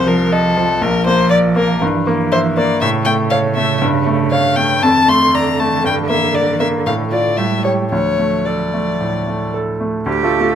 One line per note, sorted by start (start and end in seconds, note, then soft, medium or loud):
0.00 0.78 C2 medium
0.00 0.81 F3 medium
0.06 0.47 F3 soft
0.06 0.33 A#4 medium
0.32 0.83 A4 medium
0.32 0.72 D#5 soft
0.57 0.82 F3 medium
0.81 1.79 A#1 medium
0.81 1.80 F3 medium
0.81 1.06 A#4 medium
1.06 1.47 A#3 soft
1.06 1.29 C5 medium
1.30 1.38 D5 medium
1.30 1.71 D5 medium
1.56 1.82 A#3 soft
1.56 1.81 A#4 medium
1.82 2.79 G2 medium
1.82 2.78 E3 medium
2.07 2.47 A#3 medium
2.32 2.40 C5 medium
2.32 2.72 E5 medium
2.57 2.82 A#3 medium
2.57 2.80 D5 medium
2.81 3.79 A2 medium
2.81 4.79 C#3 medium
2.81 2.89 E5 medium
3.05 3.46 A3 soft
3.05 3.13 G5 medium
3.30 3.72 C#5 medium
3.30 3.38 F5 medium
3.55 3.82 A3 soft
3.55 3.81 E5 medium
3.82 4.80 G2 medium
4.07 4.47 A3 soft
4.31 4.73 C#5 medium
4.31 4.57 F5 medium
4.56 4.83 A3 soft
4.56 4.85 G5 medium
4.83 5.81 F2 medium
4.83 7.34 D3 medium
4.83 5.10 A5 medium
5.08 5.49 A3 soft
5.08 5.36 C6 medium
5.34 5.75 D5 medium
5.34 5.61 A#5 medium
5.59 5.85 A3 soft
5.59 5.85 A5 medium
5.84 6.83 G2 medium
5.84 5.94 G5 medium
6.09 6.50 A#3 soft
6.09 6.36 E5 medium
6.34 6.76 D5 soft
6.34 6.59 D5 medium
6.60 6.86 A#3 soft
6.60 6.68 E5 medium
6.86 7.37 A2 medium
6.86 6.94 F5 medium
7.12 7.35 F4 soft
7.12 7.39 D5 medium
7.12 7.36 D5 soft
7.37 7.90 A2 soft
7.37 7.88 G3 soft
7.37 7.64 E5 medium
7.64 7.89 G4 soft
7.64 7.72 C#5 medium
7.64 7.89 C#5 soft
7.92 8.98 D2 soft
7.92 9.83 F3 soft
7.92 8.47 C#5 medium
8.19 8.63 A3 soft
8.46 8.90 A4 soft
8.46 9.54 D5 soft
8.74 9.17 A3 soft
9.00 9.44 A2 soft
9.27 9.70 A3 soft
9.54 9.96 A4 soft
9.80 10.06 A3 soft
10.06 10.23 D2 medium
10.06 10.55 G4 medium
10.23 10.39 A3 soft
10.23 10.39 F4 soft
10.23 10.39 A4 soft
10.40 10.55 A3 soft
10.40 10.55 F4 soft
10.40 10.55 A4 soft